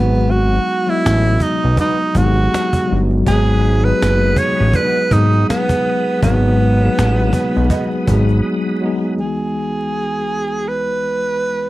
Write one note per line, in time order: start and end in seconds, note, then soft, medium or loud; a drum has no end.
0.00 0.59 G#1 medium
0.00 0.66 F#3 medium
0.00 0.67 G#3 medium
0.00 0.32 B3 medium
0.00 0.71 B3 medium
0.00 0.68 D#4 medium
0.00 0.68 F#4 medium
0.14 cajon slap soft
0.31 0.91 F#4 loud
0.31 cajon slap soft
0.68 cajon slap soft
0.86 1.87 F#3 medium
0.86 1.88 G#3 medium
0.86 1.88 B3 medium
0.86 1.44 E4 loud
0.86 1.89 D#5 medium
0.86 cajon slap soft
0.91 1.90 F#4 medium
1.06 1.38 A1 loud
1.06 cajon slap loud
1.40 1.79 D#4 medium
1.40 cajon bass medium
1.62 1.78 B1 medium
1.62 cajon slap soft
1.77 1.95 B3 medium
1.77 1.95 D#4 medium
1.77 2.19 D#4 medium
1.77 1.95 F#4 medium
1.77 1.95 B4 medium
1.77 cajon bass medium
1.77 cajon slap soft
1.99 cajon slap soft
2.14 2.49 G#1 loud
2.14 2.74 F#3 medium
2.14 2.75 G#3 medium
2.14 2.75 B3 medium
2.14 2.76 D#4 medium
2.14 3.01 F#4 loud
2.14 cajon bass medium
2.18 2.24 G4 medium
2.25 2.80 G#4 medium
2.36 cajon slap soft
2.38 cajon slap soft
2.54 cajon slap loud
2.73 cajon bass medium
2.88 3.18 F#3 medium
2.88 3.19 G#3 medium
2.88 3.19 B3 medium
2.88 3.20 D#4 medium
2.92 3.24 G1 medium
2.92 3.21 F#4 medium
3.11 cajon slap soft
3.26 3.93 G#1 loud
3.26 3.70 F#3 medium
3.26 3.70 G#3 medium
3.26 3.71 B3 medium
3.26 3.72 D#4 medium
3.26 9.15 G#4 medium
3.26 3.86 G#4 loud
3.26 9.15 F#5 medium
3.26 9.15 B5 medium
3.26 9.15 D#6 medium
3.26 cajon bass loud
3.30 3.72 G#4 loud
3.64 cajon slap soft
3.83 4.84 F#3 medium
3.83 4.84 G#3 medium
3.83 4.85 B3 medium
3.83 4.85 D#4 medium
3.83 4.39 B4 loud
3.83 cajon slap soft
3.87 4.86 G#4 medium
4.02 4.35 F#1 medium
4.02 cajon slap loud
4.36 4.77 C#5 loud
4.36 cajon bass medium
4.58 4.74 A1 medium
4.58 cajon slap soft
4.73 4.96 B3 medium
4.73 4.96 D#4 medium
4.73 4.96 F#4 medium
4.73 5.14 B4 loud
4.73 4.97 B4 medium
4.73 cajon bass medium
4.73 cajon slap soft
4.94 cajon slap soft
5.11 5.45 G#1 loud
5.11 5.99 F#3 medium
5.11 6.00 G#3 medium
5.11 6.00 B3 medium
5.11 5.49 D#4 medium
5.11 6.01 D#4 medium
5.11 cajon bass medium
5.15 6.02 G#4 medium
5.31 cajon slap soft
5.33 cajon slap soft
5.49 6.19 B3 loud
5.49 cajon slap loud
5.69 cajon bass medium
6.07 cajon slap soft
6.22 6.89 G#1 loud
6.22 6.66 F#3 medium
6.22 6.67 G#3 medium
6.22 8.41 B3 loud
6.22 6.67 B3 medium
6.22 6.68 D#4 medium
6.22 cajon bass loud
6.27 6.69 F#4 medium
6.42 cajon slap soft
6.60 cajon slap soft
6.80 7.80 F#3 medium
6.80 7.81 G#3 medium
6.80 6.87 A#3 medium
6.80 7.82 D#4 medium
6.80 cajon slap soft
6.84 7.83 G#4 medium
6.88 7.85 B3 medium
6.99 7.31 A1 medium
6.99 cajon slap loud
7.18 cajon slap soft
7.33 cajon bass medium
7.54 cajon slap soft
7.56 7.70 B1 loud
7.56 cajon slap soft
7.70 7.88 B3 medium
7.70 7.88 D#4 medium
7.70 7.88 F#4 medium
7.70 7.88 B4 medium
7.70 cajon bass medium
7.70 cajon slap soft
7.91 cajon slap soft
8.07 8.41 G#1 loud
8.07 8.67 F#3 medium
8.07 8.68 G#3 medium
8.07 8.68 B3 medium
8.07 8.69 D#4 medium
8.07 cajon bass medium
8.11 8.69 G#4 medium
8.28 cajon slap soft
8.30 cajon slap soft
8.81 9.11 F#3 medium
8.81 9.12 G#3 medium
8.81 9.12 B3 medium
8.81 9.13 D#4 medium
8.86 9.14 G#4 medium
9.16 11.70 C#2 medium
9.16 11.70 E3 soft
9.16 11.70 G#3 soft
9.16 10.69 G#4 medium
9.22 11.70 B3 soft
9.22 11.70 D#4 soft
9.22 11.70 F#4 medium
10.68 11.70 B4 medium